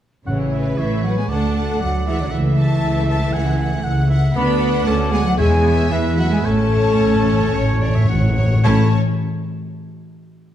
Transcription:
0.26 double bass section A1, timpani A2, cello section C#3, viola section E3, french horn section C#4, flute C#5, violin section C#5, oboe F#5
0.52 violin section B4, oboe E5
0.77 double bass section A1, cello section E3, viola section A3, french horn section E4, oboe C#5, flute E5, violin section E5
1.04 cello section F#3, viola section A3, french horn section F#4, violin section B4 F#5, flute F#5
1.17 cello section G#3, viola section B3, french horn section G#4, flute G#5, violin section G#5
1.29 double bass section D2, cello section A3, viola section D4, french horn section A4, oboe D5, violin section F#5 A5, flute A5
1.57 violin section F#5
1.80 double bass section D2, cello section F#3, viola section A3, french horn section F#4, oboe D5, flute F#5, violin section F#5
2.07 cello section E3, viola section G#3, french horn section E4, flute E5, violin section E5 F#5
2.19 cello section D3, viola section F#3, french horn section D4, flute D5, violin section D5
2.31 double bass section C#2, cello section E3, viola section A3, french horn section E4, oboe E5, flute E5, violin section E5
2.58 violin section A5
2.83 double bass section C#2
3.09 violin section A5
3.33 double bass section C#2, violin section F#5, oboe G#5
3.60 violin section F#5
3.84 double bass section C#2, oboe F#5
4.10 oboe E5, violin section F#5
4.35 double bass section D2, cello section B3, viola section D4, french horn section B4, oboe D5, violin section B5, flute B5
4.61 violin section F#5
4.86 double bass section D2, cello section A3, viola section C#4, french horn section A4, oboe D5, violin section A5, flute A5
5.12 cello section G#3, viola section B3, french horn section G#4, violin section F#5 G#5, flute G#5
5.25 cello section F#3, viola section A3, french horn section F#4, violin section F#5, flute F#5
5.37 timpani E2, double bass section E2, cello section G#3, viola section B3, french horn section G#4, oboe C#5, violin section E5 G#5, flute G#5
5.65 violin section E5
5.91 double bass section E2, cello section E3, viola section G#3, french horn section E4, oboe B4, violin section E5, flute E5
6.17 cello section F#3, viola section A3, french horn section F#4, violin section E5 F#5, flute F#5
6.31 cello section G#3, viola section B3, french horn section G#4, violin section G#5, flute G#5
6.43 double bass section A1, timpani A2, cello section A3, viola section C#4, french horn section A4, oboe C#5, violin section A5, flute A5
6.53 timpani A2
6.69 timpani A2, violin section C#5
6.76 timpani A2
6.85 timpani A2
6.93 timpani A2
6.98 double bass section A1, timpani A2, clarinet A4
7.15 timpani A2
7.24 timpani A2, violin section C#5
7.33 timpani A2
7.40 timpani A2
7.48 timpani A2
7.53 double bass section A1, timpani A2, clarinet C#5
7.64 timpani A2
7.71 timpani A2
7.79 timpani A2, violin section C#5, clarinet D5
7.88 timpani A2
7.95 timpani A2, clarinet E5
8.05 timpani A2
8.09 double bass section A1, clarinet F#5
8.13 timpani A2
8.21 timpani A2
8.29 timpani A2
8.37 timpani A2, violin section C#5
8.46 timpani A2
8.54 timpani A2
8.64 double bass section A1, timpani A2, cello section A3, viola section C#4, clarinet E4, french horn section A4, violin section C#5 A5, oboe C#5, flute A5

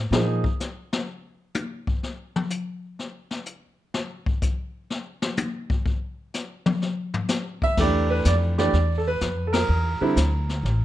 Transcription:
Already playing: upright bass A2
0.11 upright bass A#2, grand piano F3 A#3 D#4 G#4, snare
0.44 kick
0.60 snare, hi-hat pedal
0.93 snare
1.55 hi-hat pedal, high tom
1.87 kick
2.03 snare
2.36 mid tom
2.50 hi-hat pedal
2.99 snare
3.31 snare
3.46 hi-hat pedal
3.94 snare
4.26 kick
4.42 kick, hi-hat pedal
4.90 snare
5.22 snare
5.37 hi-hat pedal, high tom
5.70 kick
5.86 kick
6.34 snare, hi-hat pedal
6.66 mid tom
6.82 snare
7.14 floor tom
7.29 snare, hi-hat pedal
7.62 grand piano E5, kick
7.77 upright bass E2, grand piano E3 A3 D4 G4 D5, brush sweep, kick, snare, crash
8.10 grand piano B4
8.25 upright bass F2, grand piano D5, snare, hi-hat pedal
8.58 grand piano E3 A3 D4 G4 D5, snare
8.73 upright bass E2, brush sweep, snare
8.98 grand piano A4
9.08 grand piano B4
9.21 upright bass F2, snare, hi-hat pedal
9.47 grand piano A4
9.53 grand piano A#4, snare, ride
9.69 upright bass E2, brush sweep
10.01 grand piano D3 G3 C4 E4, muted upright bass stroke
10.16 upright bass D2, snare, hi-hat pedal
10.49 snare
10.63 upright bass A1, brush sweep, snare

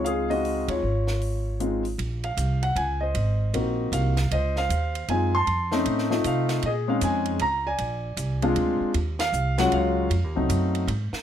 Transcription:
Already playing: upright bass C#2, grand piano G#3 C4 D#4 F4
0.05 grand piano G#4 F5, closed hi-hat
0.30 grand piano G#3 C4 D#4 F#4 D#5 F5, open hi-hat
0.45 open hi-hat
0.68 upright bass D2, grand piano F4 C#5, kick, ride
0.82 upright bass G#1
1.07 snare
1.21 open hi-hat
1.60 grand piano G#3 C4 D#4 F4, closed hi-hat
1.85 open hi-hat
1.98 upright bass A#1, ride
2.23 grand piano F5, ride
2.37 upright bass C2, hi-hat pedal, ride
2.63 grand piano F#5, ride
2.76 upright bass C#2, grand piano G#5, ride
3.01 grand piano C5 D#5
3.14 upright bass G#1, ride
3.54 upright bass A#1, grand piano A#3 C4 D#4 F#4, ride
3.92 upright bass C2, grand piano F5, hi-hat pedal, ride
4.17 snare, ride
4.31 upright bass C#2, grand piano C5 D#5, ride
4.56 grand piano C5 F5, snare
4.69 upright bass D#2, hi-hat pedal, ride
4.95 ride
5.08 upright bass F#2, grand piano G#3 C4 D#4 F4 G#5, ride
5.35 grand piano A5 C6
5.47 upright bass F2, ride
5.72 grand piano A3 C4 C#4 D#4, snare
5.85 upright bass A2, ride
5.98 snare
6.10 grand piano A3 C4 D#4 F4, snare
6.24 upright bass C3, grand piano F5, hi-hat pedal, ride
6.49 snare, ride
6.62 upright bass A#2, grand piano D#5, ride
6.67 grand piano G#4
6.88 grand piano G#3 C4 C#4 D#4 F5
7.01 upright bass F2, grand piano G#5, hi-hat pedal, ride
7.25 ride
7.39 upright bass C#2, grand piano A#5, ride
7.67 grand piano D5 G#5
7.78 upright bass A#1, ride
8.17 upright bass C2, hi-hat pedal, ride
8.42 grand piano G#3 C4 D4 F4, ride
8.56 upright bass D2, ride
8.80 muted upright bass stroke
8.94 upright bass D#2, ride
9.19 grand piano F5, snare, ride
9.33 upright bass C2, hi-hat pedal
9.58 grand piano F#3 G#3 C#4 F4 F#5, snare, ride
9.72 upright bass C#2, grand piano C#5 F5, ride
10.10 upright bass F2, ride
10.24 upright bass D#2
10.35 upright bass C2, grand piano F#3 A3 C4 D#4
10.49 upright bass F#2, hi-hat pedal, ride
10.75 ride
10.87 upright bass G#2, ride
11.13 muted upright bass stroke, snare

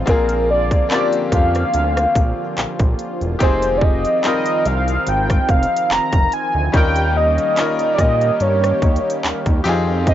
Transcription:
Already playing: analog synth pad F3 F4
0.06 analog synth bass A#1, analog synth pad D3 A#3, grand piano A#3 C4 D4 F4, soft synth lead A#4, kick, closed hi-hat
0.10 grand piano G#4
0.29 closed hi-hat
0.50 soft synth lead D5
0.71 kick, closed hi-hat
0.89 grand piano A#3 C4 C#4 F4, soft synth lead D5, clap, closed hi-hat
0.94 grand piano G4
0.98 grand piano D4
1.13 closed hi-hat
1.32 analog synth bass F2, soft synth lead F5, kick, closed hi-hat
1.55 cross-stick, closed hi-hat
1.74 analog synth bass D2, closed hi-hat
1.97 cross-stick, closed hi-hat
2.15 analog synth bass A#1, kick, closed hi-hat
2.57 analog synth bass A#1, clap, closed hi-hat
2.79 analog synth bass A#1, kick, closed hi-hat
2.99 closed hi-hat, open hi-hat
3.21 analog synth bass E1, closed hi-hat
3.39 analog synth bass F1, analog synth pad D#3 C4, grand piano C4 D#4 F4 G4, soft synth lead C5, kick, closed hi-hat
3.44 grand piano G#4
3.62 closed hi-hat
3.78 soft synth lead D5, kick
3.84 soft synth lead D#5
4.05 closed hi-hat
4.22 grand piano G3 C4 D#4 F4, soft synth lead D#5, clap, closed hi-hat
4.27 grand piano A#4
4.46 closed hi-hat
4.66 analog synth bass C2, soft synth lead F5, closed hi-hat
4.88 closed hi-hat
5.07 analog synth bass G#1, soft synth lead G5, closed hi-hat
5.30 kick, cross-stick, closed hi-hat
5.49 analog synth bass F1, soft synth lead F5, kick, closed hi-hat
5.63 closed hi-hat
5.77 closed hi-hat
5.90 analog synth bass F1, soft synth lead A#5, clap, closed hi-hat
6.13 analog synth bass F1, kick, closed hi-hat
6.32 soft synth lead G#5, closed hi-hat
6.54 analog synth bass D2
6.72 analog synth bass D#2, grand piano G3 C#4 D#4 F4, analog synth pad G3 A#3 C#4 G4, soft synth lead G5, kick, closed hi-hat
6.77 grand piano A#4
6.96 closed hi-hat
7.17 soft synth lead D#5
7.38 closed hi-hat
7.55 grand piano G3 C#4 D#4 F4, clap, closed hi-hat
7.60 grand piano A#4
7.79 closed hi-hat
7.94 soft synth lead D5
7.98 analog synth bass A#2, soft synth lead D#5, kick, closed hi-hat
8.21 closed hi-hat
8.40 analog synth bass G2, soft synth lead C#5, closed hi-hat
8.64 cross-stick, closed hi-hat
8.82 analog synth bass D#2, kick, closed hi-hat
8.96 closed hi-hat
9.10 closed hi-hat
9.24 analog synth bass D#2, clap, closed hi-hat
9.46 analog synth bass D#2, kick, closed hi-hat
9.64 analog synth bass F2, analog synth pad F3 C4 F4, grand piano C4 D#4 F4 G4, closed hi-hat
9.69 grand piano G#4
10.07 soft synth lead D#5, kick, closed hi-hat

